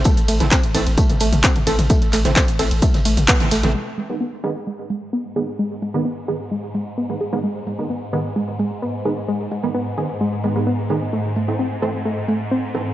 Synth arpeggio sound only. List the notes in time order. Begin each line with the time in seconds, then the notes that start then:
0.05 A3
0.28 A3
0.51 C4
0.75 A4
0.98 A3
1.21 A3
1.44 C4
1.67 A4
1.90 A3
2.13 A3
2.36 C4
2.59 A4
2.82 A3
3.05 A3
3.28 B3
3.52 A3
3.74 G#3
3.98 G#3
4.21 B3
4.44 G#4
4.67 G#3
4.90 G#3
5.13 B3
5.36 G#4
5.59 G#3
5.82 G#3
6.05 B3
6.28 G#4
6.51 G#3
6.75 G#3
6.98 B3
7.21 G#4
7.44 G#3
7.67 G#3
7.90 B3
8.13 G#4
8.36 G#3
8.59 G#3
8.82 B3
9.05 G#4
9.28 G#3
9.52 G#3
9.75 B3
9.98 G#4
10.21 G#3
10.44 G#3
10.67 B3
10.90 G#4
11.13 A3
11.36 A3
11.59 C4
11.82 A4
12.05 A3
12.28 A3
12.52 C4
12.75 A4